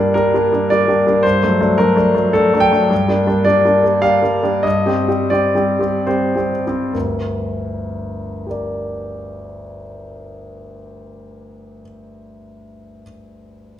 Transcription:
Already playing: G2 G3 A#3 D4 D5
0.14 G3 A#3 D4 A#4
0.34 G3 A#3 D4
0.53 G3 A#3 D4
0.70 G3 A#3 D4 D5
0.88 G3 A#3 D4
1.07 G3 A#3 D4
1.23 G2 C5
1.43 F#3 A3 D4
1.60 F#3 A3 D4
1.78 F#3 A3 D4 A#4
1.96 F#3 A3 D4
2.14 F#3 A3 D4
2.33 F#3 A3 D4 A4
2.53 F#3 A3 D4
2.60 G5
2.71 F#3 A3 D4
2.90 G2
3.08 G3 A#3 D4
3.27 G3 A#3 D4
3.44 G3 A#3 D4 D5
3.65 G3 A#3 D4
3.84 G3 A#3 D4
4.02 G3 A#3 D4 F5
4.22 G3 A#3 D4
4.43 G3 A#3 D4
4.63 G2 D#5
4.86 G3 C4 G4
5.08 G3 C4 G4
5.30 G3 C4 G4 D5
5.55 G3 C4 G4
5.79 G3 C4 G4
6.07 G3 C4 G4 C5
6.36 G3 C4 G4
6.67 G3 C4 G4
6.93 G1 D2 A#4
8.47 G4 A#4 D5

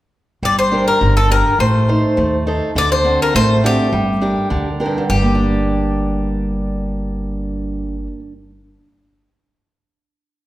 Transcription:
0.43 G1 G3 D5
0.59 C5
0.71 D4 G4 A#4
0.88 A#4
1.01 G1 D3
1.17 A4
1.30 D4 G4 A#4
1.59 A1 A3 C5
1.88 D#4 A4 C5
2.17 D#2 A3
2.47 D#4 A4 C5
2.75 D2 D3 D5
2.92 C5
3.04 C4 D4 F#4
3.22 A#4
3.34 A1 A3 C5
3.64 C4 D4 F#4 G4
3.93 G1 G3
4.21 D4 G4 A#4
4.50 D2 D3
4.80 D4 G4 A#4
4.86 G2
4.98 D3
5.09 G1 G3 G4
5.22 A#3
5.35 D4

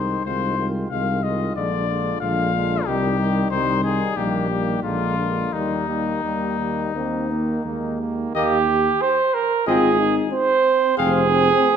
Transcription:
Already playing: C2 D#3 G#3 D#4 C5
0.25 C2 D#3 G#3 F4 C5
0.58 D#3 G#3 F4
0.90 C2 D#3 G#3 F4 F5
1.23 D#3 G#3 F4 D#5
1.56 A#1 D3 G#3 F4 D5
1.89 D3 G#3 F4
2.21 A#1 D3 G#3 F4 F5
2.54 D3 G#3 F4
2.85 C2 D#3 G3 D#4 G4
3.18 D#3 G3 D#4
3.50 C2 D#3 G3 D#4 C5
3.83 D#3 G3 D#4 G#4
4.16 A#1 D#3 G3 A#3 G4
4.50 D#3 G3 A#3
4.83 A#1 D3 G#3 A#3 F4
5.18 D3 G#3 A#3
5.53 D#2 D#3 G3 A#3 D#4
5.88 D#3 G3 A#3
6.23 D#2 D#3 G3 A#3
6.59 D#3 A#3
6.94 D#2 D#3 A#3 C4
7.30 D#3 A#3
7.65 D#2 D#3 G#3 A#3
8.01 D#3 A#3
8.35 D#2 A#3 G4 D#5
9.02 C5
9.34 A#4
9.67 G#1 C4 F4 G#4 D#5
9.99 D#4
10.32 C4 C5
10.98 F1 C4 G#4 F5

